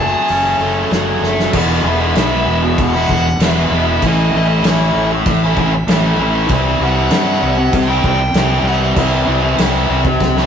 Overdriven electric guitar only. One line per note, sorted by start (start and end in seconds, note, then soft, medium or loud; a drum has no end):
0.00 0.61 F#2 medium
0.00 0.92 F#3 medium
0.00 0.59 A3 medium
0.00 1.54 G#4 medium
0.30 1.54 C#4 medium
0.61 1.23 A3 medium
0.93 1.55 F#3 medium
1.24 1.54 A3 medium
1.54 2.16 E2 medium
1.54 2.16 B2 medium
1.54 1.84 E3 medium
1.54 1.84 G#3 medium
1.54 1.85 B3 loud
1.54 1.87 E4 medium
1.84 2.03 E3 medium
1.84 2.02 G#3 medium
1.84 2.00 B3 medium
1.84 2.01 E4 loud
2.01 2.17 E3 medium
2.01 2.17 G#3 medium
2.01 2.18 B3 medium
2.01 2.19 E4 medium
2.17 2.94 E2 loud
2.17 2.94 B2 loud
2.17 2.65 E3 medium
2.17 2.63 G#3 loud
2.17 2.63 B3 loud
2.17 2.63 E4 loud
2.63 muted overdriven electric guitar stroke medium
2.94 3.10 E3 medium
2.94 3.09 G#3 medium
2.94 3.11 B3 medium
2.94 3.12 E4 medium
3.10 3.28 E3 medium
3.10 3.27 G#3 medium
3.10 3.27 B3 medium
3.10 3.27 E4 medium
3.28 muted overdriven electric guitar stroke soft
3.42 4.01 E2 loud
3.42 4.01 B2 loud
3.42 3.72 E3 loud
3.42 3.72 G#3 loud
3.42 3.73 B3 loud
3.42 3.75 E4 loud
3.73 3.90 E3 medium
3.73 3.88 G#3 medium
3.73 3.88 B3 medium
3.73 3.87 E4 medium
3.88 4.05 E3 medium
3.88 4.02 G#3 medium
3.88 4.02 B3 medium
3.88 4.06 E4 medium
4.04 4.64 A2 medium
4.04 4.34 E3 loud
4.04 4.34 A3 loud
4.04 4.36 C#4 loud
4.04 4.38 E4 loud
4.35 4.64 E3 medium
4.35 4.50 A3 medium
4.35 4.48 C#4 medium
4.35 4.48 E4 medium
4.48 4.65 A3 medium
4.48 4.66 C#4 medium
4.48 4.67 E4 medium
4.65 5.42 A2 medium
4.65 5.12 E3 medium
4.65 5.12 A3 medium
4.65 5.11 C#4 loud
4.65 5.12 E4 loud
5.12 muted overdriven electric guitar stroke medium
5.43 5.57 A3 medium
5.43 5.58 C#4 medium
5.43 5.59 E4 medium
5.58 5.74 E3 medium
5.58 5.73 A3 medium
5.58 5.73 C#4 loud
5.58 5.73 E4 medium
5.74 muted overdriven electric guitar stroke medium
5.89 6.49 A2 loud
5.89 6.18 E3 loud
5.89 6.18 A3 loud
5.89 6.18 C#4 loud
5.89 6.20 E4 loud
6.18 6.52 E3 medium
6.18 6.36 A3 medium
6.18 6.35 C#4 medium
6.18 6.34 E4 medium
6.35 6.49 A3 medium
6.35 6.49 C#4 medium
6.35 6.54 E4 medium
6.52 7.10 C3 medium
6.52 6.81 E3 loud
6.52 6.82 G3 loud
6.52 6.83 C4 loud
6.52 6.83 E4 loud
6.81 7.11 E3 medium
6.81 6.99 G3 medium
6.81 6.97 C4 medium
6.81 6.96 E4 medium
6.96 7.12 G3 medium
6.96 7.13 C4 medium
6.96 7.13 E4 medium
7.11 7.89 C3 loud
7.11 7.56 E3 loud
7.11 7.57 G3 medium
7.11 7.56 C4 medium
7.11 7.56 E4 loud
7.57 muted overdriven electric guitar stroke medium
7.88 8.05 G3 medium
7.88 8.05 C4 medium
7.88 8.06 E4 medium
8.04 8.20 E3 medium
8.04 8.20 G3 medium
8.04 8.19 C4 medium
8.04 8.19 E4 medium
8.20 muted overdriven electric guitar stroke soft
8.36 8.96 C3 loud
8.36 8.66 E3 medium
8.36 8.67 G3 medium
8.36 8.68 C4 loud
8.36 8.68 E4 loud
8.67 8.97 E3 medium
8.67 8.84 G3 medium
8.67 8.83 C4 medium
8.67 8.81 E4 medium
8.82 8.98 G3 medium
8.82 8.97 C4 medium
8.82 8.98 E4 medium
8.97 9.58 C3 loud
8.97 9.26 E3 medium
8.97 9.27 G3 loud
8.97 9.28 C4 loud
8.97 9.29 E4 loud
9.28 9.59 E3 medium
9.28 9.45 G3 medium
9.28 9.43 C4 medium
9.28 9.42 E4 medium
9.43 9.60 G3 medium
9.43 9.60 C4 medium
9.43 9.61 E4 medium
9.59 10.37 C3 medium
9.59 10.06 E3 loud
9.59 10.06 G3 loud
9.59 10.06 C4 loud
9.59 10.05 E4 loud
10.07 muted overdriven electric guitar stroke soft
10.38 10.46 G3 medium
10.38 10.46 C4 medium
10.38 10.46 E4 medium